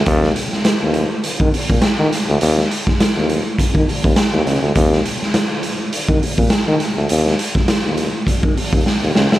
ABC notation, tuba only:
X:1
M:4/4
L:1/16
Q:"Swing 16ths" 1/4=102
K:Cphr
V:1 name="Tuba" clef=bass
E,,2 z E,, E,, E,,2 z E, E, z B,, z E, z =D,, | E,,2 z E,, E,, E,,2 z E, E, z E,, z E,, D,, =D,, | E,,2 z E,, E,, z3 E, E, z B,, z E, z =D,, | E,,2 z E,, E,, E,,2 z E, E, z E,, z E,, D,, =D,, |]